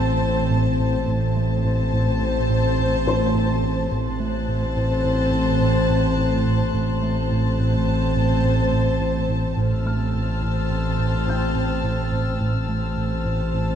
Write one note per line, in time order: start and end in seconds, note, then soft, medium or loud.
0.00 1.05 A1 medium
0.00 0.12 A2 medium
0.00 1.04 A2 medium
0.00 1.04 C4 medium
0.00 1.04 C5 medium
0.00 1.04 A5 medium
0.00 0.77 E6 soft
0.23 0.40 A2 soft
0.51 0.68 A2 medium
0.80 0.97 A2 medium
1.08 3.88 A1 medium
1.08 1.25 A2 medium
1.08 3.88 A2 medium
1.08 3.87 C4 medium
1.08 3.88 C5 medium
1.08 3.88 A5 medium
1.37 1.54 A3 medium
1.65 1.82 A2 medium
1.93 2.10 A2 medium
2.22 2.39 A2 medium
2.50 2.67 A2 medium
2.79 2.95 A2 medium
3.07 3.24 A2 medium
3.07 4.73 C5 soft
3.07 4.73 C6 soft
3.35 3.52 A2 medium
3.63 3.80 A2 medium
3.91 6.71 A1 medium
3.91 4.08 A2 medium
3.91 6.71 A2 medium
3.91 6.71 C4 medium
3.91 6.71 C5 medium
3.91 6.71 A5 medium
3.91 9.26 C6 soft
3.91 8.69 F#6 soft
4.20 4.37 A3 medium
4.48 4.65 A2 medium
4.77 4.93 A2 medium
5.04 5.21 A2 medium
5.32 5.50 A2 medium
5.61 5.78 A2 medium
5.90 6.07 A2 soft
6.18 6.35 A2 medium
6.46 6.63 A2 medium
6.74 9.54 A1 medium
6.74 6.91 A2 medium
6.74 9.53 A2 medium
6.74 9.53 C4 soft
6.74 9.53 C5 medium
6.74 9.53 A5 medium
7.02 7.19 A3 medium
7.31 7.48 A2 medium
7.60 7.77 A2 medium
7.88 8.05 A2 soft
8.16 8.33 A2 medium
8.44 8.61 A2 medium
8.73 8.90 A2 medium
9.00 9.18 A2 medium
9.29 9.46 A2 soft
9.57 12.37 A1 soft
9.57 12.37 A1 medium
9.57 9.74 A2 medium
9.57 12.37 A2 soft
9.57 12.37 C4 soft
9.57 12.36 C5 medium
9.57 12.36 A5 soft
9.57 13.75 E6 soft
9.57 13.75 F6 soft
9.86 10.03 A3 soft
9.86 11.52 F6 soft
10.14 10.31 A2 soft
10.43 10.60 A2 medium
10.71 10.88 A2 soft
10.98 11.16 A2 medium
11.27 11.44 A2 soft
11.27 12.94 G5 soft
11.27 12.94 G6 soft
11.55 11.72 A2 soft
11.84 12.01 A2 medium
12.12 12.29 A2 soft
12.40 13.75 A1 medium
12.40 13.75 A1 soft
12.40 12.57 A2 medium
12.40 13.75 A2 soft
12.40 13.75 C4 soft
12.40 13.75 C5 soft
12.40 13.75 A5 soft
12.69 12.86 A3 soft
12.97 13.14 A2 soft
13.25 13.42 A2 medium
13.53 13.71 A2 soft